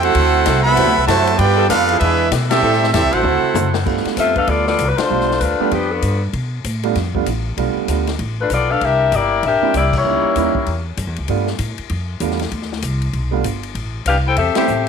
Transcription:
Already playing: upright bass E2
0.00 trombone section A3 C4 F#4, trumpet section E4 A4 C5 F#5, ride
0.15 upright bass D2, kick, ride
0.46 upright bass C2, kick, snare, hi-hat pedal, ride
0.61 trombone section C3 F#3 B3, trumpet section A4 E5 F#5 B5
0.76 upright bass E2, saxophone section F#3 D4 E4 C5, kick, ride
0.86 upright bass D2
0.96 upright bass C2
1.05 upright bass F#2, trombone section C3 F#3 A3, saxophone section F#3 D4 E4 C5, trumpet section F#4 C5 E5 A5, kick, hi-hat pedal, ride
1.09 snare
1.27 ride
1.36 upright bass G2, trombone section B3 D4 G4, trumpet section F4 B4 D5 G5, kick, ride
1.57 saxophone section G3 B3 F4 A4
1.67 upright bass F2, trombone section B3 D4 F4, trumpet section D4 A4 B4 F5, kick, snare, hi-hat pedal, ride
1.89 saxophone section F3 D4 E4 G#4, ride
1.99 upright bass E2, trombone section G#3 B3 E4, trumpet section D4 G#4 B4 E5, kick, ride
2.31 upright bass B2, kick, snare, hi-hat pedal, ride
2.48 trombone section G3 C4 E4, trumpet section C4 G4 A4 E5, snare, ride
2.62 upright bass A2, saxophone section G3 C4 E4 A4
2.73 snare
2.84 snare
2.92 upright bass E2, trombone section G3 C4 E4, trumpet section C4 G4 A4 E5, kick, snare, hi-hat pedal, ride
3.03 upright bass C2
3.10 upright bass A1, saxophone section F#3 D4 E4 C5, trombone section A3 C4 F#4, trumpet section E4 A4 C5 F#5, ride
3.23 upright bass D2, mid tom
3.43 muted upright bass stroke
3.54 upright bass F#2, hi-hat pedal, mid tom
3.74 snare
3.85 upright bass G2, grand piano G3 A3 B3 D4 F4, kick, crash
3.97 snare
4.05 muted upright bass stroke, snare, ride
4.17 upright bass F2, saxophone section C4 F4 A4 E5, kick, snare, hi-hat pedal, ride
4.36 saxophone section D4 A4 B4 F5, kick, ride
4.47 upright bass D2, saxophone section B3 F4 A4 D5, kick, ride
4.67 saxophone section B3 F4 A4 D5, snare
4.78 upright bass C2, kick, hi-hat pedal, ride
4.88 saxophone section B4
4.97 saxophone section A3 D4 F4 C5, snare, ride
5.10 upright bass B1, grand piano G3 A3 B3 D4 F4
5.21 snare
5.31 snare
5.40 upright bass D2, saxophone section A3 D4 F4 B4, kick, hi-hat pedal, ride
5.60 grand piano G3 A3 B3 D4 G4, muted upright bass stroke
5.71 upright bass F2, saxophone section F3 B3 D4 G4, kick, ride
5.91 saxophone section F3 B3 D4 A4
6.02 upright bass G2, kick, hi-hat pedal, ride
6.33 upright bass B2, kick, ride
6.64 upright bass A2, kick, hi-hat pedal, ride
6.83 grand piano G3 A3 B3 D4 F4, ride
6.95 upright bass F2, kick, snare, ride
7.15 grand piano G3 A3 B3 D4 F4, kick
7.26 upright bass A1, kick, hi-hat pedal, ride
7.57 upright bass B1, grand piano G3 A3 B3 D4 F4, kick, ride
7.75 muted upright bass stroke
7.88 upright bass D2, grand piano G3 A3 B3 D4 F4, kick, hi-hat pedal, ride
8.07 snare, ride
8.19 upright bass A1, kick, ride
8.41 saxophone section A3 D4 F4 B4
8.50 upright bass B1, saxophone section B3 F4 A4 D5, kick, hi-hat pedal, ride
8.70 saxophone section D4 A4 B4 F5
8.81 upright bass C2, saxophone section D4 G4 A#4 E5, kick, ride
9.12 upright bass G1, saxophone section E4 G4 D5, kick, hi-hat pedal, ride
9.16 saxophone section A#3
9.43 upright bass A#1, saxophone section G4 A#4 E5, kick, ride
9.47 saxophone section D4
9.62 grand piano G3 A#3 C4 D4 E4, muted upright bass stroke
9.74 upright bass C2, saxophone section A#3 E4 G4 D5, kick, hi-hat pedal, ride
9.93 saxophone section A#3 E4 G4 C#5, kick, crash
10.05 upright bass C#2, grand piano G3 A#3 C#4 D#4 E4
10.23 muted upright bass stroke
10.36 upright bass D#2, grand piano G3 A#3 C#4 D#4 E4, kick, hi-hat pedal, ride
10.55 muted upright bass stroke, kick
10.66 upright bass E2, kick, ride
10.97 upright bass F#2, kick, hi-hat pedal, ride
11.07 upright bass E2
11.16 upright bass C#2, ride
11.28 upright bass G2, grand piano G3 A3 B3 D4 F4, kick, ride
11.47 snare
11.59 upright bass A2, kick, hi-hat pedal, ride
11.78 muted upright bass stroke, ride
11.89 upright bass F2, kick, ride
12.20 upright bass E2, grand piano G3 A3 B3 D4 F4, kick, hi-hat pedal, ride
12.31 snare
12.39 snare, ride
12.52 upright bass D2, kick, ride
12.62 snare
12.72 snare
12.82 upright bass C2, kick, hi-hat pedal, ride
13.02 ride
13.13 upright bass B1, kick, ride
13.31 grand piano G3 A3 B3 D4 F4
13.44 upright bass G1, kick, hi-hat pedal, ride
13.63 ride
13.75 upright bass A1, kick, ride
14.05 upright bass C2, saxophone section D4 G4 B4 F5, kick, hi-hat pedal, ride
14.27 saxophone section E4 A4 C5 G5
14.36 upright bass E2, saxophone section C4 G4 A4 E5, kick, ride
14.55 grand piano G3 A3 B3 C4 E4, saxophone section C4 G4 A4 E5, muted upright bass stroke, snare, ride
14.67 upright bass A1, hi-hat pedal

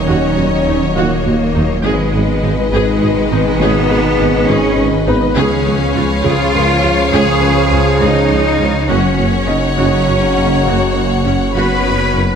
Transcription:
Already playing: detuned saw bass D#1, trombone section A#2 D#3, ambient pad D#3 F#3 D#4 C#5, french horn section F#3 C#5, violin section C#5 D#5, grand piano D#5
0.07 tuba D#2, double bass section D#2, synth pluck D#3, cello section C#4, viola section F#4, grand piano D#5
0.37 double bass section D#2, tuba D#2, synth pluck F#3, viola section F#4
0.66 tuba D#2, double bass section D#2, synth pluck A#3, viola section D#4
0.95 tuba D#2, double bass section D#2, synth pluck D#3, cello section A#3, grand piano F4 F5, viola section F#4
1.25 tuba D#2, double bass section D#2, synth pluck A#3, viola section F#4
1.54 tuba D#2, double bass section D#2, synth pluck F#3, viola section D#4
1.83 tuba G#1, detuned saw bass G#1, double bass section G#1, trombone section B2 D#3, ambient pad D#3 D#4 G#4 B4, cello section G#3, synth pluck G#3, viola section G#4, french horn section G#4 B4, violin section B4 D#5
2.13 tuba G#1, double bass section G#1, synth pluck B3, viola section G#4
2.43 tuba G#1, double bass section G#1, viola section D#4, synth pluck D#4
2.72 tuba G#1, double bass section G#1, cello section G#3, synth pluck G#3, viola section G#4
3.02 tuba G#1, double bass section G#1, synth pluck D#4, viola section G#4
3.31 tuba G#1, double bass section G#1, synth pluck B3, viola section D#4
3.60 double bass section G#1, tuba G#1, synth pluck G#3, cello section B3, viola section G#4, grand piano C#5
3.89 tuba G#1, double bass section G#1, synth pluck B3, viola section G#4
4.19 tuba G#1, double bass section G#1, viola section D#4, synth pluck D#4
4.48 tuba G#1, double bass section G#1, synth pluck G#3, cello section C#4, viola section G#4
4.77 tuba G#1, double bass section G#1, synth pluck D#4, viola section G#4
5.06 double bass section G#1, tuba G#1, grand piano B3 B4, synth pluck B3, viola section D#4
5.36 detuned saw bass C#2, double bass section C#2, tuba C#2, trombone section C#3 F3, synth pluck C#3, ambient pad F3 C#4 G#4 C#5, cello section C#4, viola section G#4, french horn section G#4 C#5, violin section C#5 F5
5.66 tuba C#2, double bass section C#2, synth pluck F3, viola section G#4
5.95 tuba C#2, double bass section C#2, synth pluck G#3, viola section F4
6.24 double bass section C#2, tuba C#2, synth pluck C#3, cello section F4, viola section G#4
6.53 double bass section C#2, tuba C#2, synth pluck G#3, viola section G#4, grand piano A#4
6.83 tuba C#2, double bass section C#2, synth pluck F3, viola section F4
7.12 double bass section C#2, tuba C#2, synth pluck C#3, viola section G#4, cello section G#4
7.41 double bass section C#2, tuba C#2, synth pluck F3, viola section G#4, grand piano B4
7.71 double bass section C#2, tuba C#2, synth pluck G#3, viola section F4
8.00 double bass section C#2, tuba C#2, synth pluck C#3, cello section D#4, viola section G#4
8.30 tuba C#2, double bass section C#2, synth pluck G#3, viola section G#4
8.60 double bass section C#2, tuba C#2, synth pluck F3, viola section F4
8.88 detuned saw bass F#1, tuba F#1, double bass section F#2, trombone section C#3 F#3, synth pluck F#3, ambient pad F#3 C#4 F#4 C#5, cello section C#4, viola section F#4, french horn section F#4 C#5, violin section C#5 F#5
9.18 tuba F#1, double bass section F#2, synth pluck A#3, viola section F#4
9.47 tuba F#1, double bass section F#2, viola section C#4, synth pluck C#4, grand piano D#4 D#5
9.77 tuba F#1, double bass section F#2, synth pluck F#3, cello section C#4, viola section F#4
10.06 tuba F#1, double bass section F#2, synth pluck C#4, viola section F#4
10.36 tuba F#1, double bass section F#2, synth pluck A#3, viola section C#4
10.66 tuba F#1, double bass section F#2, synth pluck F#3, cello section A#3, viola section F#4
10.96 tuba F#1, double bass section F#2, synth pluck A#3, viola section F#4
11.25 tuba F#1, double bass section F#2, synth pluck C#4, viola section C#4, grand piano F#4 F#5
11.54 tuba F#1, double bass section F#2, synth pluck F#3, french horn section B3, viola section F#4, cello section B4, violin section B5
11.84 tuba F#1, double bass section F#2, synth pluck C#4, viola section F#4
12.13 tuba F#1, double bass section F#2, synth pluck A#3, viola section C#4

